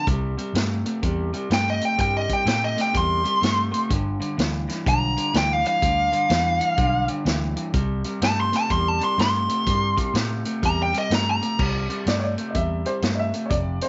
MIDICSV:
0, 0, Header, 1, 6, 480
1, 0, Start_track
1, 0, Tempo, 480000
1, 67, Time_signature, 4, 2, 24, 8
1, 13888, End_track
2, 0, Start_track
2, 0, Title_t, "Lead electric guitar"
2, 0, Program_c, 0, 29
2, 1535, Note_on_c, 0, 79, 94
2, 1675, Note_off_c, 0, 79, 0
2, 1700, Note_on_c, 0, 75, 86
2, 1838, Note_off_c, 0, 75, 0
2, 1851, Note_on_c, 0, 79, 71
2, 1993, Note_off_c, 0, 79, 0
2, 2009, Note_on_c, 0, 79, 76
2, 2152, Note_off_c, 0, 79, 0
2, 2169, Note_on_c, 0, 75, 74
2, 2311, Note_off_c, 0, 75, 0
2, 2332, Note_on_c, 0, 79, 80
2, 2473, Note_off_c, 0, 79, 0
2, 2487, Note_on_c, 0, 79, 95
2, 2630, Note_off_c, 0, 79, 0
2, 2643, Note_on_c, 0, 75, 82
2, 2788, Note_off_c, 0, 75, 0
2, 2813, Note_on_c, 0, 79, 86
2, 2953, Note_off_c, 0, 79, 0
2, 2972, Note_on_c, 0, 84, 90
2, 3888, Note_off_c, 0, 84, 0
2, 4888, Note_on_c, 0, 82, 90
2, 5341, Note_off_c, 0, 82, 0
2, 5372, Note_on_c, 0, 79, 75
2, 5529, Note_off_c, 0, 79, 0
2, 5529, Note_on_c, 0, 77, 90
2, 5660, Note_off_c, 0, 77, 0
2, 5672, Note_on_c, 0, 77, 101
2, 7067, Note_off_c, 0, 77, 0
2, 8244, Note_on_c, 0, 81, 108
2, 8389, Note_off_c, 0, 81, 0
2, 8405, Note_on_c, 0, 84, 84
2, 8550, Note_off_c, 0, 84, 0
2, 8568, Note_on_c, 0, 81, 93
2, 8711, Note_off_c, 0, 81, 0
2, 8719, Note_on_c, 0, 84, 77
2, 8883, Note_off_c, 0, 84, 0
2, 8883, Note_on_c, 0, 81, 97
2, 9029, Note_off_c, 0, 81, 0
2, 9043, Note_on_c, 0, 84, 87
2, 9188, Note_off_c, 0, 84, 0
2, 9212, Note_on_c, 0, 84, 102
2, 10129, Note_off_c, 0, 84, 0
2, 10657, Note_on_c, 0, 82, 101
2, 10796, Note_off_c, 0, 82, 0
2, 10826, Note_on_c, 0, 79, 86
2, 10961, Note_off_c, 0, 79, 0
2, 10984, Note_on_c, 0, 75, 91
2, 11120, Note_off_c, 0, 75, 0
2, 11148, Note_on_c, 0, 82, 84
2, 11282, Note_off_c, 0, 82, 0
2, 11307, Note_on_c, 0, 82, 100
2, 11597, Note_off_c, 0, 82, 0
2, 13888, End_track
3, 0, Start_track
3, 0, Title_t, "Upright piano"
3, 0, Program_c, 1, 0
3, 12078, Note_on_c, 1, 74, 93
3, 12193, Note_on_c, 1, 73, 70
3, 12221, Note_off_c, 1, 74, 0
3, 12236, Note_on_c, 1, 74, 90
3, 12246, Note_off_c, 1, 73, 0
3, 12504, Note_on_c, 1, 75, 57
3, 12541, Note_off_c, 1, 74, 0
3, 12542, Note_off_c, 1, 75, 0
3, 12558, Note_on_c, 1, 76, 87
3, 12862, Note_off_c, 1, 76, 0
3, 12864, Note_on_c, 1, 72, 84
3, 13151, Note_on_c, 1, 75, 57
3, 13175, Note_off_c, 1, 72, 0
3, 13193, Note_on_c, 1, 76, 94
3, 13205, Note_off_c, 1, 75, 0
3, 13457, Note_on_c, 1, 73, 66
3, 13496, Note_off_c, 1, 73, 0
3, 13498, Note_on_c, 1, 74, 91
3, 13500, Note_off_c, 1, 76, 0
3, 13812, Note_off_c, 1, 74, 0
3, 13824, Note_on_c, 1, 72, 85
3, 13888, Note_off_c, 1, 72, 0
3, 13888, End_track
4, 0, Start_track
4, 0, Title_t, "Clean electric guitar"
4, 0, Program_c, 2, 27
4, 69, Note_on_c, 2, 48, 83
4, 75, Note_on_c, 2, 55, 97
4, 343, Note_off_c, 2, 48, 0
4, 346, Note_off_c, 2, 55, 0
4, 375, Note_on_c, 2, 48, 68
4, 381, Note_on_c, 2, 55, 80
4, 529, Note_off_c, 2, 48, 0
4, 533, Note_off_c, 2, 55, 0
4, 549, Note_on_c, 2, 48, 71
4, 552, Note_on_c, 2, 57, 96
4, 823, Note_off_c, 2, 48, 0
4, 825, Note_off_c, 2, 57, 0
4, 856, Note_on_c, 2, 48, 75
4, 861, Note_on_c, 2, 57, 83
4, 1010, Note_off_c, 2, 48, 0
4, 1012, Note_off_c, 2, 57, 0
4, 1025, Note_on_c, 2, 48, 86
4, 1031, Note_on_c, 2, 55, 97
4, 1301, Note_off_c, 2, 48, 0
4, 1303, Note_off_c, 2, 55, 0
4, 1332, Note_on_c, 2, 48, 79
4, 1337, Note_on_c, 2, 55, 81
4, 1487, Note_off_c, 2, 48, 0
4, 1490, Note_off_c, 2, 55, 0
4, 1499, Note_on_c, 2, 48, 78
4, 1504, Note_on_c, 2, 57, 93
4, 1777, Note_off_c, 2, 48, 0
4, 1780, Note_off_c, 2, 57, 0
4, 1807, Note_on_c, 2, 48, 70
4, 1810, Note_on_c, 2, 57, 81
4, 1964, Note_off_c, 2, 48, 0
4, 1966, Note_off_c, 2, 57, 0
4, 1977, Note_on_c, 2, 48, 84
4, 1982, Note_on_c, 2, 55, 88
4, 2256, Note_off_c, 2, 48, 0
4, 2258, Note_off_c, 2, 55, 0
4, 2289, Note_on_c, 2, 48, 69
4, 2294, Note_on_c, 2, 55, 91
4, 2445, Note_off_c, 2, 48, 0
4, 2448, Note_off_c, 2, 55, 0
4, 2457, Note_on_c, 2, 48, 76
4, 2462, Note_on_c, 2, 57, 88
4, 2736, Note_off_c, 2, 48, 0
4, 2738, Note_off_c, 2, 57, 0
4, 2760, Note_on_c, 2, 48, 82
4, 2767, Note_on_c, 2, 57, 88
4, 2920, Note_off_c, 2, 48, 0
4, 2924, Note_off_c, 2, 57, 0
4, 2932, Note_on_c, 2, 48, 79
4, 2939, Note_on_c, 2, 55, 92
4, 3213, Note_off_c, 2, 48, 0
4, 3216, Note_off_c, 2, 55, 0
4, 3239, Note_on_c, 2, 48, 70
4, 3243, Note_on_c, 2, 55, 86
4, 3397, Note_off_c, 2, 48, 0
4, 3402, Note_off_c, 2, 55, 0
4, 3409, Note_on_c, 2, 48, 80
4, 3416, Note_on_c, 2, 57, 88
4, 3691, Note_off_c, 2, 48, 0
4, 3695, Note_off_c, 2, 57, 0
4, 3713, Note_on_c, 2, 48, 72
4, 3718, Note_on_c, 2, 57, 89
4, 3876, Note_off_c, 2, 48, 0
4, 3879, Note_off_c, 2, 57, 0
4, 3892, Note_on_c, 2, 43, 83
4, 3897, Note_on_c, 2, 50, 96
4, 4173, Note_off_c, 2, 43, 0
4, 4175, Note_off_c, 2, 50, 0
4, 4198, Note_on_c, 2, 43, 74
4, 4205, Note_on_c, 2, 50, 79
4, 4359, Note_off_c, 2, 43, 0
4, 4362, Note_off_c, 2, 50, 0
4, 4371, Note_on_c, 2, 43, 74
4, 4379, Note_on_c, 2, 52, 77
4, 4652, Note_off_c, 2, 43, 0
4, 4656, Note_off_c, 2, 52, 0
4, 4680, Note_on_c, 2, 43, 74
4, 4686, Note_on_c, 2, 52, 87
4, 4840, Note_off_c, 2, 43, 0
4, 4843, Note_off_c, 2, 52, 0
4, 4857, Note_on_c, 2, 43, 94
4, 4863, Note_on_c, 2, 50, 107
4, 5135, Note_off_c, 2, 43, 0
4, 5138, Note_off_c, 2, 50, 0
4, 5166, Note_on_c, 2, 43, 76
4, 5170, Note_on_c, 2, 50, 85
4, 5319, Note_off_c, 2, 43, 0
4, 5325, Note_off_c, 2, 50, 0
4, 5331, Note_on_c, 2, 43, 89
4, 5338, Note_on_c, 2, 52, 91
4, 5612, Note_off_c, 2, 43, 0
4, 5616, Note_off_c, 2, 52, 0
4, 5642, Note_on_c, 2, 43, 73
4, 5648, Note_on_c, 2, 52, 83
4, 5801, Note_off_c, 2, 43, 0
4, 5804, Note_off_c, 2, 52, 0
4, 5814, Note_on_c, 2, 43, 73
4, 5819, Note_on_c, 2, 50, 86
4, 6094, Note_off_c, 2, 43, 0
4, 6096, Note_off_c, 2, 50, 0
4, 6120, Note_on_c, 2, 43, 69
4, 6125, Note_on_c, 2, 50, 78
4, 6275, Note_off_c, 2, 43, 0
4, 6283, Note_off_c, 2, 50, 0
4, 6287, Note_on_c, 2, 43, 72
4, 6291, Note_on_c, 2, 52, 92
4, 6570, Note_off_c, 2, 43, 0
4, 6573, Note_off_c, 2, 52, 0
4, 6593, Note_on_c, 2, 43, 65
4, 6598, Note_on_c, 2, 52, 88
4, 6757, Note_off_c, 2, 43, 0
4, 6759, Note_off_c, 2, 52, 0
4, 6770, Note_on_c, 2, 43, 88
4, 6777, Note_on_c, 2, 50, 92
4, 7052, Note_off_c, 2, 43, 0
4, 7056, Note_off_c, 2, 50, 0
4, 7082, Note_on_c, 2, 43, 73
4, 7083, Note_on_c, 2, 50, 89
4, 7241, Note_off_c, 2, 43, 0
4, 7242, Note_off_c, 2, 50, 0
4, 7252, Note_on_c, 2, 43, 85
4, 7257, Note_on_c, 2, 52, 100
4, 7533, Note_off_c, 2, 43, 0
4, 7536, Note_off_c, 2, 52, 0
4, 7562, Note_on_c, 2, 43, 77
4, 7567, Note_on_c, 2, 52, 88
4, 7722, Note_off_c, 2, 43, 0
4, 7724, Note_off_c, 2, 52, 0
4, 7741, Note_on_c, 2, 48, 84
4, 7751, Note_on_c, 2, 55, 85
4, 8018, Note_off_c, 2, 48, 0
4, 8023, Note_off_c, 2, 55, 0
4, 8048, Note_on_c, 2, 48, 78
4, 8052, Note_on_c, 2, 55, 86
4, 8205, Note_off_c, 2, 48, 0
4, 8206, Note_off_c, 2, 55, 0
4, 8217, Note_on_c, 2, 48, 76
4, 8218, Note_on_c, 2, 57, 91
4, 8496, Note_off_c, 2, 48, 0
4, 8496, Note_off_c, 2, 57, 0
4, 8524, Note_on_c, 2, 48, 86
4, 8526, Note_on_c, 2, 57, 80
4, 8683, Note_off_c, 2, 48, 0
4, 8684, Note_off_c, 2, 57, 0
4, 8700, Note_on_c, 2, 48, 81
4, 8704, Note_on_c, 2, 55, 102
4, 8978, Note_off_c, 2, 48, 0
4, 8980, Note_off_c, 2, 55, 0
4, 9005, Note_on_c, 2, 48, 82
4, 9011, Note_on_c, 2, 55, 88
4, 9163, Note_off_c, 2, 48, 0
4, 9166, Note_off_c, 2, 55, 0
4, 9180, Note_on_c, 2, 48, 85
4, 9184, Note_on_c, 2, 57, 90
4, 9458, Note_off_c, 2, 48, 0
4, 9460, Note_off_c, 2, 57, 0
4, 9491, Note_on_c, 2, 48, 84
4, 9494, Note_on_c, 2, 57, 86
4, 9646, Note_off_c, 2, 48, 0
4, 9648, Note_off_c, 2, 57, 0
4, 9666, Note_on_c, 2, 48, 84
4, 9671, Note_on_c, 2, 55, 89
4, 9941, Note_off_c, 2, 48, 0
4, 9944, Note_off_c, 2, 55, 0
4, 9965, Note_on_c, 2, 48, 80
4, 9970, Note_on_c, 2, 55, 80
4, 10124, Note_off_c, 2, 48, 0
4, 10126, Note_off_c, 2, 55, 0
4, 10140, Note_on_c, 2, 48, 80
4, 10147, Note_on_c, 2, 57, 88
4, 10418, Note_off_c, 2, 48, 0
4, 10422, Note_off_c, 2, 57, 0
4, 10454, Note_on_c, 2, 48, 78
4, 10458, Note_on_c, 2, 57, 87
4, 10608, Note_off_c, 2, 48, 0
4, 10610, Note_off_c, 2, 57, 0
4, 10623, Note_on_c, 2, 48, 85
4, 10627, Note_on_c, 2, 55, 91
4, 10900, Note_off_c, 2, 48, 0
4, 10902, Note_off_c, 2, 55, 0
4, 10930, Note_on_c, 2, 48, 78
4, 10936, Note_on_c, 2, 55, 91
4, 11086, Note_off_c, 2, 48, 0
4, 11090, Note_off_c, 2, 55, 0
4, 11107, Note_on_c, 2, 48, 80
4, 11111, Note_on_c, 2, 57, 99
4, 11382, Note_off_c, 2, 48, 0
4, 11384, Note_off_c, 2, 57, 0
4, 11416, Note_on_c, 2, 48, 76
4, 11420, Note_on_c, 2, 57, 80
4, 11569, Note_off_c, 2, 48, 0
4, 11571, Note_off_c, 2, 57, 0
4, 11588, Note_on_c, 2, 48, 77
4, 11590, Note_on_c, 2, 55, 79
4, 11862, Note_off_c, 2, 48, 0
4, 11863, Note_off_c, 2, 55, 0
4, 11896, Note_on_c, 2, 48, 71
4, 11900, Note_on_c, 2, 55, 84
4, 12050, Note_off_c, 2, 48, 0
4, 12052, Note_off_c, 2, 55, 0
4, 12071, Note_on_c, 2, 48, 71
4, 12076, Note_on_c, 2, 57, 86
4, 12344, Note_off_c, 2, 48, 0
4, 12347, Note_off_c, 2, 57, 0
4, 12374, Note_on_c, 2, 48, 72
4, 12380, Note_on_c, 2, 57, 76
4, 12529, Note_off_c, 2, 48, 0
4, 12532, Note_off_c, 2, 57, 0
4, 12546, Note_on_c, 2, 48, 75
4, 12550, Note_on_c, 2, 55, 83
4, 12822, Note_off_c, 2, 48, 0
4, 12824, Note_off_c, 2, 55, 0
4, 12854, Note_on_c, 2, 48, 72
4, 12859, Note_on_c, 2, 55, 72
4, 13008, Note_off_c, 2, 48, 0
4, 13011, Note_off_c, 2, 55, 0
4, 13025, Note_on_c, 2, 48, 82
4, 13033, Note_on_c, 2, 57, 99
4, 13301, Note_off_c, 2, 48, 0
4, 13305, Note_off_c, 2, 57, 0
4, 13336, Note_on_c, 2, 48, 67
4, 13339, Note_on_c, 2, 57, 80
4, 13490, Note_off_c, 2, 48, 0
4, 13491, Note_off_c, 2, 57, 0
4, 13509, Note_on_c, 2, 41, 70
4, 13512, Note_on_c, 2, 48, 91
4, 13783, Note_off_c, 2, 41, 0
4, 13785, Note_off_c, 2, 48, 0
4, 13814, Note_on_c, 2, 41, 69
4, 13822, Note_on_c, 2, 48, 82
4, 13888, Note_off_c, 2, 41, 0
4, 13888, Note_off_c, 2, 48, 0
4, 13888, End_track
5, 0, Start_track
5, 0, Title_t, "Fingered electric bass"
5, 0, Program_c, 3, 33
5, 71, Note_on_c, 3, 36, 85
5, 359, Note_off_c, 3, 36, 0
5, 538, Note_on_c, 3, 43, 97
5, 829, Note_off_c, 3, 43, 0
5, 1028, Note_on_c, 3, 40, 86
5, 1317, Note_off_c, 3, 40, 0
5, 1504, Note_on_c, 3, 43, 91
5, 1793, Note_off_c, 3, 43, 0
5, 1986, Note_on_c, 3, 43, 94
5, 2275, Note_off_c, 3, 43, 0
5, 2455, Note_on_c, 3, 45, 90
5, 2747, Note_off_c, 3, 45, 0
5, 2943, Note_on_c, 3, 40, 86
5, 3232, Note_off_c, 3, 40, 0
5, 3424, Note_on_c, 3, 43, 86
5, 3713, Note_off_c, 3, 43, 0
5, 3903, Note_on_c, 3, 31, 94
5, 4192, Note_off_c, 3, 31, 0
5, 4382, Note_on_c, 3, 38, 95
5, 4671, Note_off_c, 3, 38, 0
5, 4867, Note_on_c, 3, 35, 94
5, 5155, Note_off_c, 3, 35, 0
5, 5342, Note_on_c, 3, 38, 99
5, 5632, Note_off_c, 3, 38, 0
5, 5823, Note_on_c, 3, 38, 84
5, 6113, Note_off_c, 3, 38, 0
5, 6299, Note_on_c, 3, 40, 91
5, 6590, Note_off_c, 3, 40, 0
5, 6780, Note_on_c, 3, 35, 91
5, 7071, Note_off_c, 3, 35, 0
5, 7253, Note_on_c, 3, 38, 92
5, 7546, Note_off_c, 3, 38, 0
5, 7738, Note_on_c, 3, 36, 96
5, 8029, Note_off_c, 3, 36, 0
5, 8217, Note_on_c, 3, 43, 98
5, 8509, Note_off_c, 3, 43, 0
5, 8701, Note_on_c, 3, 40, 99
5, 8991, Note_off_c, 3, 40, 0
5, 9180, Note_on_c, 3, 43, 97
5, 9471, Note_off_c, 3, 43, 0
5, 9663, Note_on_c, 3, 43, 82
5, 9953, Note_off_c, 3, 43, 0
5, 10138, Note_on_c, 3, 45, 91
5, 10430, Note_off_c, 3, 45, 0
5, 10629, Note_on_c, 3, 40, 97
5, 10917, Note_off_c, 3, 40, 0
5, 11104, Note_on_c, 3, 43, 93
5, 11394, Note_off_c, 3, 43, 0
5, 11592, Note_on_c, 3, 36, 83
5, 11879, Note_off_c, 3, 36, 0
5, 12065, Note_on_c, 3, 43, 90
5, 12355, Note_off_c, 3, 43, 0
5, 12546, Note_on_c, 3, 40, 86
5, 12836, Note_off_c, 3, 40, 0
5, 13026, Note_on_c, 3, 43, 83
5, 13315, Note_off_c, 3, 43, 0
5, 13505, Note_on_c, 3, 29, 83
5, 13795, Note_off_c, 3, 29, 0
5, 13888, End_track
6, 0, Start_track
6, 0, Title_t, "Drums"
6, 72, Note_on_c, 9, 36, 109
6, 73, Note_on_c, 9, 42, 82
6, 172, Note_off_c, 9, 36, 0
6, 173, Note_off_c, 9, 42, 0
6, 384, Note_on_c, 9, 42, 53
6, 484, Note_off_c, 9, 42, 0
6, 551, Note_on_c, 9, 42, 84
6, 563, Note_on_c, 9, 38, 117
6, 651, Note_off_c, 9, 42, 0
6, 663, Note_off_c, 9, 38, 0
6, 857, Note_on_c, 9, 42, 64
6, 957, Note_off_c, 9, 42, 0
6, 1030, Note_on_c, 9, 36, 110
6, 1030, Note_on_c, 9, 42, 79
6, 1130, Note_off_c, 9, 36, 0
6, 1130, Note_off_c, 9, 42, 0
6, 1335, Note_on_c, 9, 42, 54
6, 1435, Note_off_c, 9, 42, 0
6, 1507, Note_on_c, 9, 42, 73
6, 1519, Note_on_c, 9, 38, 109
6, 1607, Note_off_c, 9, 42, 0
6, 1619, Note_off_c, 9, 38, 0
6, 1814, Note_on_c, 9, 42, 66
6, 1914, Note_off_c, 9, 42, 0
6, 1984, Note_on_c, 9, 42, 85
6, 1987, Note_on_c, 9, 36, 101
6, 2084, Note_off_c, 9, 42, 0
6, 2087, Note_off_c, 9, 36, 0
6, 2293, Note_on_c, 9, 42, 65
6, 2295, Note_on_c, 9, 36, 74
6, 2393, Note_off_c, 9, 42, 0
6, 2395, Note_off_c, 9, 36, 0
6, 2465, Note_on_c, 9, 42, 86
6, 2477, Note_on_c, 9, 38, 111
6, 2565, Note_off_c, 9, 42, 0
6, 2577, Note_off_c, 9, 38, 0
6, 2777, Note_on_c, 9, 42, 73
6, 2789, Note_on_c, 9, 38, 31
6, 2877, Note_off_c, 9, 42, 0
6, 2889, Note_off_c, 9, 38, 0
6, 2943, Note_on_c, 9, 42, 81
6, 2946, Note_on_c, 9, 36, 108
6, 3043, Note_off_c, 9, 42, 0
6, 3046, Note_off_c, 9, 36, 0
6, 3251, Note_on_c, 9, 42, 58
6, 3351, Note_off_c, 9, 42, 0
6, 3429, Note_on_c, 9, 42, 79
6, 3441, Note_on_c, 9, 38, 104
6, 3529, Note_off_c, 9, 42, 0
6, 3541, Note_off_c, 9, 38, 0
6, 3736, Note_on_c, 9, 42, 63
6, 3836, Note_off_c, 9, 42, 0
6, 3904, Note_on_c, 9, 42, 90
6, 3905, Note_on_c, 9, 36, 113
6, 4004, Note_off_c, 9, 42, 0
6, 4005, Note_off_c, 9, 36, 0
6, 4214, Note_on_c, 9, 42, 59
6, 4314, Note_off_c, 9, 42, 0
6, 4388, Note_on_c, 9, 42, 82
6, 4400, Note_on_c, 9, 38, 114
6, 4488, Note_off_c, 9, 42, 0
6, 4500, Note_off_c, 9, 38, 0
6, 4694, Note_on_c, 9, 42, 64
6, 4706, Note_on_c, 9, 38, 35
6, 4794, Note_off_c, 9, 42, 0
6, 4806, Note_off_c, 9, 38, 0
6, 4865, Note_on_c, 9, 36, 106
6, 4869, Note_on_c, 9, 42, 73
6, 4965, Note_off_c, 9, 36, 0
6, 4969, Note_off_c, 9, 42, 0
6, 5174, Note_on_c, 9, 42, 58
6, 5274, Note_off_c, 9, 42, 0
6, 5343, Note_on_c, 9, 42, 75
6, 5355, Note_on_c, 9, 38, 99
6, 5443, Note_off_c, 9, 42, 0
6, 5455, Note_off_c, 9, 38, 0
6, 5654, Note_on_c, 9, 42, 61
6, 5754, Note_off_c, 9, 42, 0
6, 5824, Note_on_c, 9, 36, 106
6, 5826, Note_on_c, 9, 42, 84
6, 5924, Note_off_c, 9, 36, 0
6, 5926, Note_off_c, 9, 42, 0
6, 6130, Note_on_c, 9, 42, 59
6, 6230, Note_off_c, 9, 42, 0
6, 6299, Note_on_c, 9, 42, 91
6, 6311, Note_on_c, 9, 38, 110
6, 6399, Note_off_c, 9, 42, 0
6, 6411, Note_off_c, 9, 38, 0
6, 6608, Note_on_c, 9, 42, 71
6, 6708, Note_off_c, 9, 42, 0
6, 6775, Note_on_c, 9, 42, 74
6, 6779, Note_on_c, 9, 36, 106
6, 6875, Note_off_c, 9, 42, 0
6, 6879, Note_off_c, 9, 36, 0
6, 7080, Note_on_c, 9, 42, 55
6, 7180, Note_off_c, 9, 42, 0
6, 7260, Note_on_c, 9, 42, 81
6, 7272, Note_on_c, 9, 38, 102
6, 7360, Note_off_c, 9, 42, 0
6, 7372, Note_off_c, 9, 38, 0
6, 7566, Note_on_c, 9, 42, 66
6, 7666, Note_off_c, 9, 42, 0
6, 7735, Note_on_c, 9, 42, 81
6, 7739, Note_on_c, 9, 36, 113
6, 7835, Note_off_c, 9, 42, 0
6, 7839, Note_off_c, 9, 36, 0
6, 8042, Note_on_c, 9, 42, 67
6, 8142, Note_off_c, 9, 42, 0
6, 8217, Note_on_c, 9, 42, 87
6, 8230, Note_on_c, 9, 38, 111
6, 8317, Note_off_c, 9, 42, 0
6, 8330, Note_off_c, 9, 38, 0
6, 8529, Note_on_c, 9, 42, 69
6, 8541, Note_on_c, 9, 38, 34
6, 8629, Note_off_c, 9, 42, 0
6, 8641, Note_off_c, 9, 38, 0
6, 8700, Note_on_c, 9, 42, 76
6, 8703, Note_on_c, 9, 36, 94
6, 8800, Note_off_c, 9, 42, 0
6, 8803, Note_off_c, 9, 36, 0
6, 9012, Note_on_c, 9, 42, 53
6, 9112, Note_off_c, 9, 42, 0
6, 9191, Note_on_c, 9, 42, 74
6, 9203, Note_on_c, 9, 38, 104
6, 9291, Note_off_c, 9, 42, 0
6, 9303, Note_off_c, 9, 38, 0
6, 9494, Note_on_c, 9, 42, 64
6, 9594, Note_off_c, 9, 42, 0
6, 9667, Note_on_c, 9, 36, 109
6, 9668, Note_on_c, 9, 42, 78
6, 9767, Note_off_c, 9, 36, 0
6, 9768, Note_off_c, 9, 42, 0
6, 9975, Note_on_c, 9, 36, 81
6, 9977, Note_on_c, 9, 42, 63
6, 10075, Note_off_c, 9, 36, 0
6, 10077, Note_off_c, 9, 42, 0
6, 10148, Note_on_c, 9, 42, 88
6, 10160, Note_on_c, 9, 38, 110
6, 10248, Note_off_c, 9, 42, 0
6, 10260, Note_off_c, 9, 38, 0
6, 10452, Note_on_c, 9, 42, 67
6, 10551, Note_off_c, 9, 42, 0
6, 10630, Note_on_c, 9, 36, 100
6, 10632, Note_on_c, 9, 42, 81
6, 10730, Note_off_c, 9, 36, 0
6, 10732, Note_off_c, 9, 42, 0
6, 10942, Note_on_c, 9, 42, 59
6, 11042, Note_off_c, 9, 42, 0
6, 11110, Note_on_c, 9, 42, 82
6, 11122, Note_on_c, 9, 38, 108
6, 11210, Note_off_c, 9, 42, 0
6, 11222, Note_off_c, 9, 38, 0
6, 11425, Note_on_c, 9, 42, 69
6, 11525, Note_off_c, 9, 42, 0
6, 11592, Note_on_c, 9, 36, 106
6, 11593, Note_on_c, 9, 49, 93
6, 11692, Note_off_c, 9, 36, 0
6, 11693, Note_off_c, 9, 49, 0
6, 11898, Note_on_c, 9, 42, 59
6, 11998, Note_off_c, 9, 42, 0
6, 12066, Note_on_c, 9, 42, 79
6, 12078, Note_on_c, 9, 38, 113
6, 12166, Note_off_c, 9, 42, 0
6, 12178, Note_off_c, 9, 38, 0
6, 12378, Note_on_c, 9, 42, 60
6, 12478, Note_off_c, 9, 42, 0
6, 12547, Note_on_c, 9, 42, 72
6, 12548, Note_on_c, 9, 36, 103
6, 12647, Note_off_c, 9, 42, 0
6, 12648, Note_off_c, 9, 36, 0
6, 12855, Note_on_c, 9, 42, 52
6, 12955, Note_off_c, 9, 42, 0
6, 13023, Note_on_c, 9, 42, 80
6, 13035, Note_on_c, 9, 38, 99
6, 13123, Note_off_c, 9, 42, 0
6, 13135, Note_off_c, 9, 38, 0
6, 13335, Note_on_c, 9, 42, 59
6, 13435, Note_off_c, 9, 42, 0
6, 13504, Note_on_c, 9, 42, 77
6, 13506, Note_on_c, 9, 36, 106
6, 13604, Note_off_c, 9, 42, 0
6, 13606, Note_off_c, 9, 36, 0
6, 13812, Note_on_c, 9, 42, 62
6, 13888, Note_off_c, 9, 42, 0
6, 13888, End_track
0, 0, End_of_file